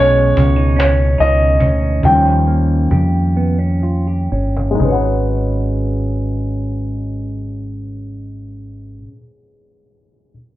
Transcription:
Already playing: B1 B2 G#3 C#4 D#4 D#5
0.00 C#5
0.37 C#2 C#4, cajon bass
0.56 D#4
0.77 C#4 C#5, cajon slap
1.18 C#2 D#4 D#5, cajon slap
1.60 D2 C#4, cajon bass
2.03 D#2 D#3 F3 G3 C#4 G5, cajon bass
2.47 A#3, cajon slap
2.91 F2 G4, cajon bass
3.36 B3, cajon slap
3.59 C#4
3.82 F4, cajon slap
4.07 G4
4.29 G1 C#4, cajon slap
4.57 cajon slap
4.71 G#3
4.75 G#3 D#4
4.79 G#1 C#4 G#4, cajon bass
4.83 B4
4.88 F#4 C#5
4.92 B4 F#5

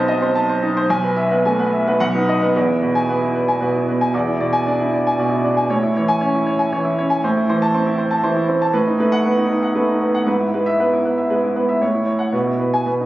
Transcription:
Already playing: B1 B3 C4 D#4 C5 D#5 A5
0.08 D#5
0.22 C4 C5
0.35 A5
0.49 C5
0.63 D#4
0.77 C5
0.90 B1 G#5
1.04 B4
1.16 E5
1.31 B3 B4
1.45 A3 G#5
1.59 B3 B4
1.73 E5
1.87 B3 B4
2.00 B1 F#5
2.15 D#4 B4
2.29 D#5
2.42 B3 B4
2.56 E2 B4
2.68 E4
2.82 B2 B4
2.95 G#5
3.09 B3 B4
3.22 E4
3.35 B4
3.48 G#5
3.61 B2 B4
3.75 E4
3.88 B3 B4
4.01 G#5
4.14 E2 D5
4.27 E4
4.40 B2 D5
4.53 G#5
4.67 D4 D5
4.81 E4
4.93 D5
5.07 G#5
5.19 B2 D5
5.30 E4
5.44 D4 D5
5.57 G#5
5.70 A2 C#5
5.83 E4
5.97 E3 C#5
6.08 G#5
6.21 C#4 C#5
6.35 E4
6.47 C#5
6.59 G#5
6.72 E3 C#5
6.85 E4
6.98 C#4 C#5
7.10 G#5
7.24 A2 C5
7.37 E4
7.49 E3 C5
7.62 A5
7.74 C4 C5
7.86 E4
7.98 C5
8.11 A5
8.24 E3 C5
8.36 E4
8.48 C4 C5
8.62 A5
8.73 A2 B4
8.87 D#4
9.00 A3 B4
9.12 F#5
9.26 B3 B4
9.37 D#4
9.49 D#4 B4
9.63 F#5
9.75 A3 B4
9.88 D#4
10.01 B3 B4
10.15 F#5
10.27 G#2 B4
10.40 E4
10.54 G#3 B4
10.66 E5
10.80 B3 B4
10.93 E4
11.05 B4
11.18 E5
11.30 G#3 B4
11.43 E4
11.56 B3 B4
11.69 E5
11.82 A2 C#5
11.94 E4
12.06 C#5
12.19 F#5
12.33 B2 B4
12.47 E4
12.60 B4
12.74 G#5
12.86 B2 B4
13.00 D#4

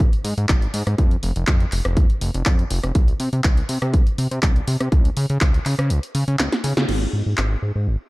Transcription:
0.00 kick, closed hi-hat
0.13 closed hi-hat
0.24 G#2, open hi-hat
0.38 G#2, closed hi-hat
0.49 G#1, kick, clap, closed hi-hat
0.62 closed hi-hat
0.74 G#2, open hi-hat
0.87 G#2, cross-stick, closed hi-hat
0.98 F2, kick, closed hi-hat
1.11 closed hi-hat
1.23 F1, open hi-hat
1.36 F1, closed hi-hat
1.47 F2, kick, clap, closed hi-hat
1.60 closed hi-hat
1.72 F1, clap, open hi-hat
1.85 F1, cross-stick, closed hi-hat
1.97 F2, kick, closed hi-hat
2.10 closed hi-hat
2.21 F1, open hi-hat
2.34 F1, closed hi-hat
2.45 F2, kick, clap, closed hi-hat
2.59 closed hi-hat
2.71 F1, open hi-hat
2.83 F1, cross-stick, closed hi-hat
2.95 C2, kick, closed hi-hat
3.08 closed hi-hat
3.20 C3, open hi-hat
3.33 C3, closed hi-hat
3.44 C2, kick, clap, closed hi-hat
3.57 closed hi-hat
3.69 C3, open hi-hat
3.82 C3, cross-stick, closed hi-hat
3.94 C2, kick, closed hi-hat
4.07 closed hi-hat
4.18 C3, open hi-hat
4.31 C3, closed hi-hat
4.42 C2, kick, clap, closed hi-hat
4.56 closed hi-hat
4.68 C3, open hi-hat
4.80 C3, cross-stick, closed hi-hat
4.92 C#2, kick, closed hi-hat
5.05 closed hi-hat
5.17 C#3, open hi-hat
5.30 C#3, closed hi-hat
5.41 C#2, kick, clap, closed hi-hat
5.54 closed hi-hat
5.65 C#3, clap, open hi-hat
5.79 C#3, cross-stick, closed hi-hat
5.90 C#2, closed hi-hat
6.03 closed hi-hat
6.15 C#3, open hi-hat
6.28 C#3, closed hi-hat
6.39 C#2, snare, clap, closed hi-hat
6.52 snare, closed hi-hat
6.64 C#3, open hi-hat
6.77 C#3, snare, closed hi-hat
6.88 G#1, crash
7.13 G#2
7.26 G#2
7.37 G#1, clap
7.62 G#2
7.75 G#2
7.87 G#1

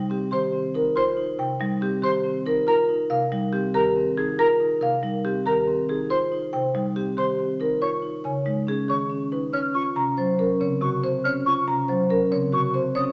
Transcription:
Already playing: G3 D#4
0.09 C4 G4
0.31 D#3 G4 C5 C6
0.53 C4
0.74 D#4 A#4
0.96 F4 C5 C6
1.17 D#4
1.39 C3 G5
1.60 G3 D#4
1.81 C4 G4
2.02 D#3 G4 C5 C6
2.24 C4
2.46 D#4 A#4
2.67 F4 A#4 A#5
2.89 D#4
3.10 C3 A#4 F5
3.32 G3 D#4
3.53 C4 G4
3.74 D#3 G4 A#4 A#5
3.96 C4
4.17 D#4 G#4
4.38 F4 A#4 A#5
4.60 D#4
4.81 C3 A#4 F5
5.03 G3 D#4
5.25 C4 G4
5.46 D#3 G4 A#4 A#5
5.67 C4
5.89 D#4 G#4
6.10 F4 C5 C6
6.32 D#4
6.53 C3 C5 G5
6.75 G3 D#4
6.96 C4 G4
7.17 D#3 G4 C5 C6
7.39 C4
7.60 D#4 A#4
7.81 F4 C#5 C#6
8.02 D#4
8.24 C#3 C#5 G#5
8.45 G#3 D#4
8.67 C#4 G#4
8.88 D#3 G#4 C#5 C#6
9.10 C#4
9.32 D#4 B4
9.53 C#4 C#5 F6
9.74 F4 C#6
9.96 C3 C#4 A#5
10.17 F#3 C5
10.39 C#4 A#4
10.60 C#3 C4 C#5
10.81 C3 F#4 C#6
11.03 C4 C5
11.24 C#4 C#5 F6
11.46 F4 C#6
11.67 C3 C#4 A#5
11.88 F#3 C5
12.10 C#4 A#4
12.31 C#3 C4 C#5
12.52 C3 F#4 C#6
12.74 C4 C5
12.95 C#4 C#5 D#6

